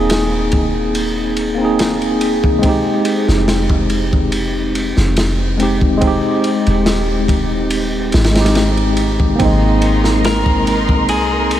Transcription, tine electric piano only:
Already playing: A#3 C4 D#4 G#4
1.55 A#3 C4
1.61 D#4 G#4
2.59 G#3 C4
2.65 D#4 G4
5.58 G#3 C4 D#4
5.63 G4
5.97 G#3 C4
6.04 D#4 G4
8.31 G#3 C4
8.38 D#4 G4
9.35 A#3 C4
9.42 G#3 D#4

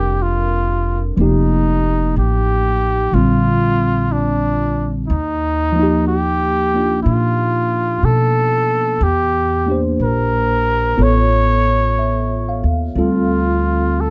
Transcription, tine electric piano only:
Already playing: G3 C4 D4 F4 G4 A4 A#4
1.17 F3 A#3
1.21 D#4 G4
3.12 D3 G3 C4
3.16 F4
5.72 F3 A#3
5.79 D#4 G4
6.74 A#3 D4 F4
9.66 A#3 D4 G4
9.72 C5
10.97 B3 F4 A4
11.02 C#5
11.99 E5
12.49 F5
12.96 G3 C4 F4 A4

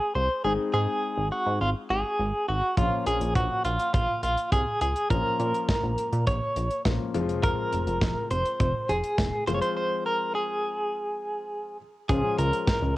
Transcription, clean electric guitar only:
Already playing: G#4
0.15 C5
0.44 G#4
0.74 G#4
1.32 F#4
1.61 F4
1.90 G#4
2.48 F#4
2.78 F4
3.07 G#4
3.36 F#4
3.65 F4
3.94 F4
4.23 F4
4.52 G#4
4.82 G#4
5.11 A#4
6.27 C#5
7.44 A#4
8.31 C5
8.89 G#4
9.47 C5
9.54 C#5
9.62 C5
9.77 C5
10.06 A#4
10.35 G#4
12.09 G#4
12.39 A#4

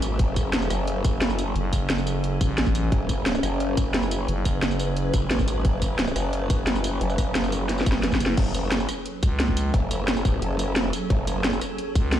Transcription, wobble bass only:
Already playing: G#1
0.19 F#1
0.70 F#1
2.92 F#1
3.43 F#1
5.14 F#1
5.31 G#1
5.65 F#1
6.16 F#1
7.01 F#1
7.86 F#1
8.37 F#1
9.74 F#1
10.25 A1
10.42 F#1
11.10 F#1

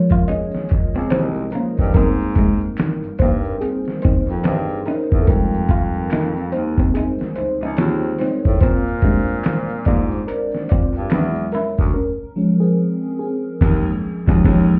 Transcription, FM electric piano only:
Already playing: F3 G#3 C#4 F4 A#4 C#5
0.28 G#4 D#5
1.11 D#4 C5
1.52 C#4 A#4
1.94 G3 A#3 C4 D#4 A#4
3.19 D#4 C5
3.61 C4 G#4
4.02 D#4 C5
4.44 D#4 C5
4.86 C#4 A#4
5.22 A4
5.28 G3 G#3 D#4 A#4
6.52 D#4 C5
6.94 C4 G#4
7.36 D#4 C5
7.78 F4 C#5
8.19 D#4 C5
8.61 F4 C5
9.03 G3 G#3 C4 D4
9.86 F4 D5
10.27 D4 A#4
10.69 F4 D5
11.11 F#3 G#3 D4 B4
11.52 C#4 A#4
11.94 C#4 A#4
12.36 F3 G#3 C#4
12.60 C4 G#4
13.19 C4 G#4
14.27 F3 G#3 C#4
14.44 F3 G#3 C#4

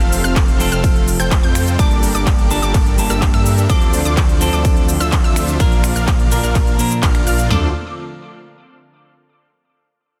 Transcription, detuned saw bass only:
Already playing: F1
0.24 F1
0.72 F1
1.20 F1
1.43 F2
1.79 G1
2.15 G1
2.62 G1
3.10 G1
3.34 G2
3.70 D2
4.05 D2
4.53 D2
5.01 D2
5.24 D2
5.60 A#1
5.96 A#1
6.43 A#1
7.03 A#1
7.27 A#1
7.51 D2

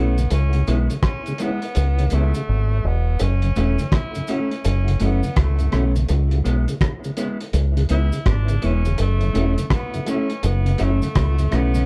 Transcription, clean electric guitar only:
Already playing: A3 C#4 E4
0.67 G#3 B3 E4
1.40 G#3 B3 E4
1.63 muted clean electric guitar stroke
2.11 G#3 B3 E4
3.56 A3 C#4 E4
4.28 A3 C#4 E4
4.51 muted clean electric guitar stroke
5.00 A3 C#4 E4
5.72 A3 C#4 E4
6.44 G#3 B3 E4
7.17 G#3 B3 E4
7.41 muted clean electric guitar stroke
7.90 G#3 B3 E4
8.62 G#3 B3 E4
9.33 A3 C#4 E4
10.07 A3 C#4 E4
10.30 muted clean electric guitar stroke
10.78 A3 C#4 E4
11.51 A3 C#4 E4
11.74 A3 C#4 E4

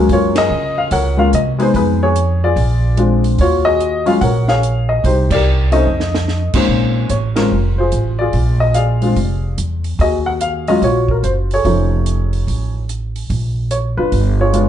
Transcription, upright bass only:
0.09 F#2
0.50 C#3
0.91 C#2
1.33 C3
1.74 F2
2.56 A#1
3.39 D#2
4.21 A#1
5.04 C2
5.86 F2
6.54 muted upright bass stroke
6.69 A#1
7.10 A1
7.52 F1
7.92 A1
8.34 A#1
9.16 F1
9.58 E2
9.99 D#2
10.82 A#1
11.23 F#1
11.65 F1
12.48 A1
13.30 A#1
13.97 F#1
14.12 G1

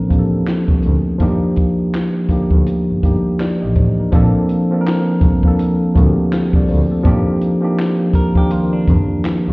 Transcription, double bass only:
0.12 A1
0.69 C2
0.85 D2
1.21 D#2
2.30 D2
2.52 D2
2.91 G1
3.04 G1
3.64 A1
3.77 A1
4.14 A#1
5.22 C2
5.97 D2
6.55 C2
6.70 D2
7.06 D#2
8.89 F2
9.49 D#2

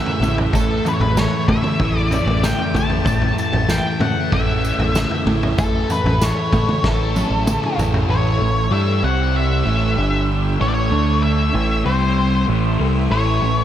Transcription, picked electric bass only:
0.20 A1
0.53 A1
1.00 A1
1.48 A2
1.80 A1
2.26 A1
2.74 A1
3.06 A1
3.53 A1
4.00 A2
4.32 A1
4.78 A1
5.26 A1
5.58 A1
6.04 A1
6.53 A2
6.84 A1
7.30 A1
7.78 A1
8.08 A1
8.41 A1
8.71 G2
9.03 C2
9.66 A1
9.97 G1
10.61 A1
10.92 D2
11.54 A1
11.86 C2
12.48 A1
12.80 C2
13.10 A1
13.42 A1

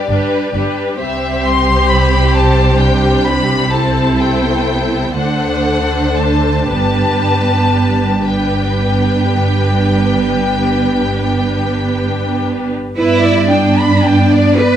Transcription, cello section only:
0.10 G2
0.55 G2
1.01 C3
5.17 D3
6.69 G2
12.99 E4
13.51 D4
14.60 B4

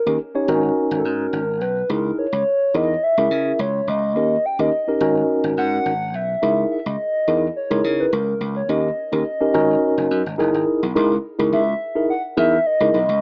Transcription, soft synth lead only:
Already playing: A#4
0.98 A4
1.05 A#4
1.62 B4
1.90 A#4
2.19 C#5
2.76 D#5
3.03 E5
3.61 C#5
3.89 D#5
4.46 G5
4.60 D#5
5.58 F#5
6.15 E5
6.72 E5
6.87 D#5
7.56 C#5
8.00 B4
8.13 A#4
8.57 C#5
8.70 D#5
11.53 E5
12.10 F#5
12.38 E5
12.66 D#5
12.95 D#5

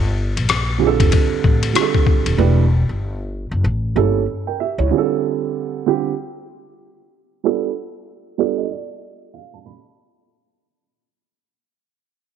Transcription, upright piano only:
0.78 D3 G3 C4 F4 G#4
0.87 A4
1.73 D3 G3 C4 F4 G#4
1.81 A4
2.37 E3 A3 D4 G4 B4
3.95 G3 A#3 C#4 E4 A4
4.47 A#4 G5
4.60 G4 E5
4.79 E4 C#5
4.90 D3 G3 C4 F4 G#4
4.98 A4
5.86 D3 G3 C4 F4 G4
7.44 G3 B3 D4 F4 A4
8.38 G3 B3 D4 F4 A4 D5
8.58 D#5
8.70 D5
9.34 F5
9.54 A5
9.66 B5

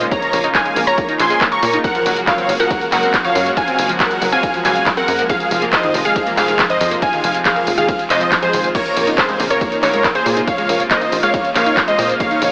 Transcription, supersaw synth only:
0.12 C#5 A#5
0.55 F5 G#5
0.87 C#5 A#5
1.19 G#5 C6
1.52 A#5 C#6
1.84 A#4 F#5
2.27 C#5 F5
2.60 A#4 F#5
2.92 A#4 F#5
3.25 C#5 F5
3.57 F5 G#5
4.00 A#4 F#5
4.32 F5 G#5
4.65 F5 G#5
4.97 A#4 F#5
5.29 G#4 F5
5.73 C5 D#5
6.05 G#4 F5
6.37 G#4 F5
6.70 C5 D#5
7.02 F5 G#5
7.45 G#4 F5
7.78 G#4 F5
8.10 C5 D#5
8.42 G#4 C5
8.75 A#4 C#5
9.18 G#4 C5
9.50 A#4 C#5
9.83 A#4 C#5
10.15 G#4 C5
10.47 C#5 F5
10.91 C5 D#5
11.23 C#5 F5
11.55 C#5 F5
11.88 C5 D#5
12.20 C#5 F5

